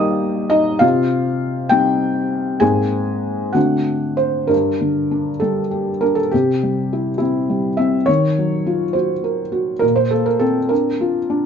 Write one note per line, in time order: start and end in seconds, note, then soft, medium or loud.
0.00 0.85 D#3 medium
0.00 0.77 G3 soft
0.00 0.77 A#3 soft
0.00 0.49 D#4 medium
0.00 0.85 D5 medium
0.00 0.47 D#5 medium
0.00 0.85 D6 loud
0.00 0.51 D#6 medium
0.50 0.79 D#4 medium
0.50 0.81 D#5 medium
0.79 1.67 C3 medium
0.79 1.66 F4 medium
0.79 1.69 F5 medium
1.69 2.57 G3 soft
1.69 2.57 C4 soft
1.69 2.58 D#4 soft
1.69 2.57 G4 medium
1.69 2.61 G5 medium
2.60 3.52 G#2 medium
2.60 3.51 A#3 soft
2.60 3.51 C4 soft
2.60 3.51 D#4 soft
2.60 3.51 G#4 medium
2.60 3.54 G#5 medium
3.53 4.48 D3 soft
3.53 4.47 A3 soft
3.53 4.47 C4 soft
3.53 4.47 D4 soft
3.53 4.15 F#4 soft
3.53 4.50 F#5 medium
4.17 4.50 C5 medium
4.47 6.27 G2 soft
4.47 5.40 A#4 medium
4.81 5.30 D3 soft
5.11 5.59 D4 soft
5.40 5.90 G3 soft
5.40 6.01 A4 medium
5.71 6.19 G4 soft
6.01 6.32 D4 soft
6.01 6.16 A#4 medium
6.15 6.31 A4 medium
6.31 8.05 C3 soft
6.31 7.20 G4 medium
6.63 7.10 G3 soft
6.93 7.16 E4 soft
7.18 7.67 C4 soft
7.18 7.77 E4 medium
7.50 7.96 G3 soft
7.77 8.08 C4 soft
7.77 8.07 E5 medium
8.06 9.79 D#3 soft
8.06 8.95 C#5 medium
8.38 8.85 F#3 soft
8.66 9.13 F4 soft
8.93 9.41 F#4 soft
8.93 9.81 C5 medium
9.24 9.71 A#4 soft
9.52 9.82 F#4 soft
9.79 11.46 A#2 soft
9.79 9.96 A#4 medium
9.96 10.11 C5 medium
10.11 10.59 A#3 soft
10.11 10.26 A4 medium
10.26 10.41 A#4 medium
10.39 10.88 C4 soft
10.39 10.70 A4 medium
10.69 11.17 D4 soft
10.69 11.46 A#4 medium
11.00 11.46 F4 soft
11.30 11.46 D4 soft